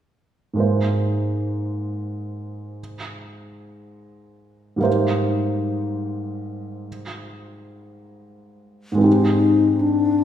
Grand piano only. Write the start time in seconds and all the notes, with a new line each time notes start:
0.53 G#2 G#3 A#3
0.59 D#4 C5
4.76 G#2 G3 A#3
4.82 D#4 C5
8.92 G#2 G#3
8.98 C4 D#4
9.04 G4